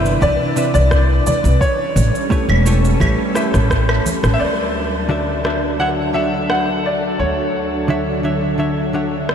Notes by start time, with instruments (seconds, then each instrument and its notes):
Already playing: upright bass G1, hollow-body jazz guitar C3 C4 E4 B4 D5, string machine E3 D4 B4, grand piano E5
0.05 cabasa
0.21 upright bass C2, hollow-body jazz guitar C3 C4 E4 B4 D5, grand piano D5, kick, high conga, cabasa
0.56 hollow-body jazz guitar C3 C4 E4 B4 E5, cabasa
0.74 upright bass C2, grand piano D5, high conga, cabasa
0.91 kick, cross-stick, cabasa
1.27 grand piano D5, high conga, low conga, cabasa
1.44 upright bass C2, cabasa
1.60 string machine G3 C#4 A4, grand piano C#5, kick, cabasa
1.96 upright bass A1, high conga, low conga, cabasa
2.15 cabasa
2.30 hollow-body jazz guitar A3 E4 G4 B4 C#5, kick, cabasa
2.49 upright bass E1, high conga, claves
2.65 hollow-body jazz guitar A3 E4 G4 B4 C#5, cabasa
2.85 cabasa
3.00 upright bass A1, hollow-body jazz guitar A3 E4 G4 B4 C#5, kick, high conga, cabasa, claves
3.35 hollow-body jazz guitar A3 E4 G4 B4 E5, cross-stick, cabasa
3.54 upright bass A1, cross-stick, high conga, cabasa
3.70 kick, cross-stick, cabasa
3.89 cross-stick, claves
4.06 high conga, cabasa
4.23 upright bass A1, cross-stick, cabasa
4.34 grand piano E5
4.40 upright bass D2, string machine F#3 D4 A4, grand piano D5
5.09 hollow-body jazz guitar D3 D4 F#4 D5 E5
5.44 hollow-body jazz guitar D3 D4 F#4 D5 E5, cross-stick
5.79 hollow-body jazz guitar D3 D4 F#4 C#5 E5, grand piano F#5
6.13 hollow-body jazz guitar D3 D4 F#4 C#5 F#5, grand piano E5
6.50 grand piano F#5, cross-stick
6.86 grand piano D5
7.19 upright bass D2, grand piano C#5
7.88 hollow-body jazz guitar D3 D4 F#4 C#5 E5
8.23 hollow-body jazz guitar D3 D4 F#4 C#5 E5
8.58 hollow-body jazz guitar D3 D4 F#4 C#5 E5
8.93 hollow-body jazz guitar D3 D4 F#4 C#5 F#5
9.29 cross-stick